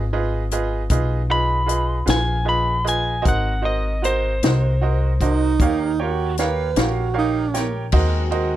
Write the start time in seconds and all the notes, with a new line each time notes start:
Already playing: G#1
0.13 F4 G#4 B4 D#5
0.51 F4 G#4 B4 D#5, closed hi-hat
0.90 B1 F4 G#4 B4 D#5, kick, closed hi-hat
1.30 F4 G#4 B4 D#5 B5
1.66 F4 G#4 B4 D#5, closed hi-hat
2.06 A#1 F4 G#4 B4 F5, snare, closed hi-hat
2.10 G#5
2.45 F4 G#4 B4 D#5 B5
2.84 F4 G#4 B4 D#5, closed hi-hat
2.89 G#5
3.22 G#1 F#4 A#4 C5 D#5, kick, closed hi-hat
3.28 F#5
3.62 F#4 A#4 C5 D#5
4.02 F#4 A#4 C5 D#5, closed hi-hat
4.43 C2 F#4 A#4 C5 D#5, snare, closed hi-hat
4.81 F#4 A#4 C5 D#5
5.21 D#4 F#4 A#4 C5 D#5, kick, closed hi-hat
5.60 D#2 G4 A#4 C#5 F5, kick, closed hi-hat
5.99 F#4 G4 A#4 C#5 G5
6.37 G4 A#4 B4 C#5 F5, snare, closed hi-hat
6.76 A#1 F#4 G4 A#4 C#5 F5, snare, closed hi-hat
7.14 G4 A#4 C#5 F5
7.18 D#4
7.54 G4 A#4 C#5 G5, snare, closed hi-hat
7.92 D#2 G#3 C4 F#4 A#4 C5 D#5, kick, crash
8.31 F#4 A#4 C5 D#5, ride